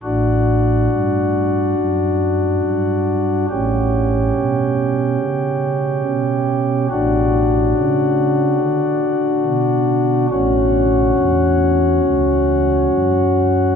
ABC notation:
X:1
M:4/4
L:1/8
Q:1/4=70
K:D
V:1 name="Pipe organ"
[DF]8 | [CG]8 | [DF]8 | [CF]8 |]
V:2 name="Pipe organ" clef=bass
[A,,,A,,]2 G,,2 F,,2 G,,2 | [A,,,A,,]2 B,,2 C,2 B,,2 | [A,,,A,,]2 C,2 D,2 B,,2 | [A,,,A,,]2 E,,2 C,,2 F,,2 |]